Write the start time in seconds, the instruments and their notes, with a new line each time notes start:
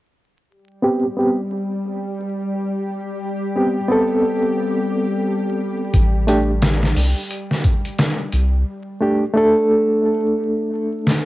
0.50 synth drone G3 G4
0.82 reed electric piano B3 C4 G4
1.17 reed electric piano B3 C4 G4
3.56 reed electric piano B3 C4 G4
3.88 reed electric piano B3 C4 A4
5.94 analog synth bass A1, kick, closed hi-hat
6.27 reed electric piano A3 D4 G4, closed hi-hat
6.62 snare, closed hi-hat
6.83 snare
6.96 analog synth bass C2, open hi-hat
7.31 closed hi-hat
7.51 snare
7.64 kick, closed hi-hat
7.85 closed hi-hat
7.99 snare, closed hi-hat
8.33 analog synth bass C2, closed hi-hat
9.01 reed electric piano A3 D4 G4
9.34 reed electric piano A3 D4 A4
11.07 snare